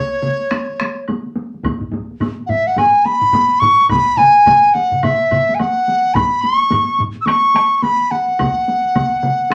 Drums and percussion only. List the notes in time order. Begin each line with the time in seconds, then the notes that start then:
0.22 taiko mid, taiko high
0.40 taiko high
0.51 taiko rim, taiko high, high woodblock
0.69 taiko high
0.80 taiko rim, taiko high
1.08 taiko high, high woodblock
1.26 taiko high
1.36 taiko high
1.54 taiko high
1.63 taiko, taiko low-mid, taiko high, high woodblock
1.81 taiko low-mid
1.92 taiko low-mid, taiko high
2.11 taiko high
2.20 taiko low-mid, taiko high, high woodblock
2.39 taiko high
2.49 taiko low-mid, taiko high
2.67 taiko high
2.77 taiko low-mid, taiko high, high woodblock
2.94 taiko high
3.05 taiko high
3.22 taiko low-mid
3.33 taiko low-mid, taiko high, high woodblock
3.51 taiko high
3.62 taiko low-mid, taiko high
3.80 taiko high
3.89 taiko, taiko low-mid, taiko mid, taiko high, high woodblock
4.08 taiko high
4.17 taiko low-mid, taiko mid, taiko high
4.37 taiko high
4.45 taiko, taiko low-mid, taiko mid, taiko high, high woodblock
4.64 taiko high
4.75 taiko high
4.91 taiko low-mid, taiko mid, taiko high
5.03 taiko low-mid, taiko mid, taiko high, high woodblock
5.21 taiko high
5.31 taiko low-mid, taiko mid, taiko high, high woodblock
5.49 taiko high
5.59 taiko high, high woodblock
5.77 taiko high
5.88 taiko high
6.05 taiko high
6.14 taiko, taiko low-mid, taiko high, high woodblock
6.33 taiko high
6.43 taiko high
6.60 taiko high
6.71 taiko low-mid, taiko high, high woodblock
6.88 taiko high
6.98 taiko low-mid, taiko high
7.15 taiko high
7.26 taiko rim, taiko high, high woodblock
7.43 taiko high
7.55 taiko rim, taiko high
7.82 taiko high, high woodblock
7.99 taiko high
8.11 taiko high
8.28 taiko high
8.39 taiko, taiko mid, taiko high, high woodblock
8.57 taiko high
8.68 taiko high
8.85 taiko high
8.95 taiko, taiko mid, taiko high, high woodblock
9.13 taiko high
9.23 taiko mid, taiko high
9.40 taiko high
9.51 taiko high